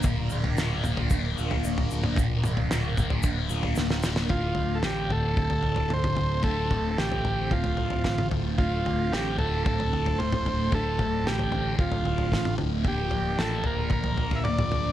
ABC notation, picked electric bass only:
X:1
M:4/4
L:1/8
Q:1/4=112
K:Dm
V:1 name="Picked electric bass" clef=bass
D,,, D,,, D,,, D,,, D,,, D,,, D,,, D,,, | D,,, D,,, D,,, D,,, D,,, D,,, D,,, D,,, | D,,, D,,, A,,, D,,, D,,, D,,, D,,,2 | D,,, D,,, A,,,2 D,,, D,,, A,,, D,,, |
D,,, D,,, A,,, D,,, D,,, D,,, D,,,2 | D,,, D,,, A,,,2 D,,, D,,, A,,, D,,, | D,,, D,,, A,,, D,,, D,,, D,,, D,,,2 |]